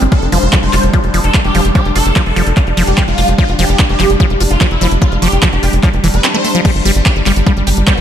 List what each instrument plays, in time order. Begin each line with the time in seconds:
Already playing: synth texture G3 D4
0.02 analog synth bass G1, acid bass G3, closed hi-hat
0.12 acid bass F4, digital synth lead A4, kick, closed hi-hat
0.22 analog synth bass F1, closed hi-hat
0.32 analog synth bass F1, acid bass F3, digital synth lead C5, open hi-hat
0.42 analog synth bass F1, closed hi-hat
0.53 acid bass F3, kick, clap, closed hi-hat
0.63 analog synth bass F1, digital synth lead C5, closed hi-hat
0.73 analog synth bass F1, acid bass F4, clap, open hi-hat
0.83 analog synth bass F1, closed hi-hat
0.93 acid bass F3, kick, closed hi-hat
1.04 analog synth bass F1, closed hi-hat
1.14 analog synth bass F1, acid bass F3, open hi-hat
1.24 analog synth bass F1, digital synth lead A4, closed hi-hat
1.34 acid bass F4, kick, clap, closed hi-hat
1.44 analog synth bass F1, digital synth lead G4, closed hi-hat
1.55 analog synth bass F1, acid bass F3, open hi-hat
1.65 analog synth bass F1, closed hi-hat
1.75 acid bass F3, digital synth lead G4, kick, closed hi-hat
1.85 analog synth bass F1, closed hi-hat
1.95 analog synth bass F1, acid bass F4, digital synth lead A4, open hi-hat
2.06 analog synth bass F1, closed hi-hat
2.16 acid bass F3, kick, clap, closed hi-hat
2.26 analog synth bass F1, digital synth lead A4, closed hi-hat
2.36 analog synth bass F1, acid bass F3, open hi-hat
2.47 analog synth bass F1, closed hi-hat
2.57 acid bass F4, kick, clap, closed hi-hat
2.67 analog synth bass F1, closed hi-hat
2.77 analog synth bass F1, acid bass F3, open hi-hat
2.87 analog synth bass F1, digital synth lead G4, closed hi-hat
2.98 acid bass F3, kick, clap, closed hi-hat
3.08 analog synth bass F1, digital synth lead F4, closed hi-hat
3.18 analog synth bass F1, acid bass F4, open hi-hat
3.28 analog synth bass F1, closed hi-hat
3.38 acid bass F3, digital synth lead F4, kick, closed hi-hat
3.49 analog synth bass F1, closed hi-hat
3.59 analog synth bass F1, acid bass F3, digital synth lead G4, open hi-hat
3.69 analog synth bass F1, closed hi-hat
3.79 acid bass F4, kick, clap, closed hi-hat
3.89 analog synth bass F1, digital synth lead G4, closed hi-hat
4.00 analog synth bass F1, acid bass F3, clap, open hi-hat
4.10 analog synth bass F1, closed hi-hat
4.20 acid bass F3, kick, closed hi-hat
4.30 analog synth bass F1, closed hi-hat
4.40 analog synth bass F1, acid bass F4, open hi-hat
4.51 analog synth bass F1, digital synth lead F4, closed hi-hat
4.61 acid bass F3, kick, clap, closed hi-hat
4.71 analog synth bass F1, digital synth lead E4, closed hi-hat
4.81 analog synth bass F1, acid bass F3, open hi-hat
4.91 analog synth bass F1, closed hi-hat
5.02 digital synth lead F4, acid bass F4, kick, closed hi-hat
5.12 analog synth bass F1, closed hi-hat
5.22 analog synth bass F1, acid bass F3, digital synth lead G4, open hi-hat
5.32 analog synth bass F1, closed hi-hat
5.42 acid bass F3, kick, clap, closed hi-hat
5.53 analog synth bass F1, digital synth lead G4, closed hi-hat
5.63 analog synth bass F1, acid bass F4, open hi-hat
5.73 analog synth bass F1, closed hi-hat
5.83 acid bass F3, kick, clap, closed hi-hat
5.93 analog synth bass F1, closed hi-hat
6.04 analog synth bass F1, acid bass E3, open hi-hat
6.14 analog synth bass F1, digital synth lead B4, closed hi-hat
6.24 acid bass C4, clap, closed hi-hat
6.34 acid bass A3, digital synth lead C5, closed hi-hat
6.44 acid bass A3, open hi-hat
6.55 acid bass F3, closed hi-hat
6.65 acid bass G3, synth texture G3 D4, kick, closed hi-hat, crash
6.75 analog synth bass G1, closed hi-hat
6.85 analog synth bass G1, acid bass G3, open hi-hat
6.96 analog synth bass G1, closed hi-hat
7.06 acid bass G4, kick, clap, closed hi-hat
7.16 analog synth bass G1, closed hi-hat
7.26 analog synth bass G1, acid bass G3, clap, open hi-hat
7.36 analog synth bass G1, closed hi-hat
7.47 acid bass G3, kick, closed hi-hat
7.57 analog synth bass G1, closed hi-hat
7.67 analog synth bass G1, acid bass G4, open hi-hat
7.77 analog synth bass G1, closed hi-hat
7.87 acid bass G3, wobble bass B3, kick, clap, closed hi-hat
7.98 analog synth bass G1, closed hi-hat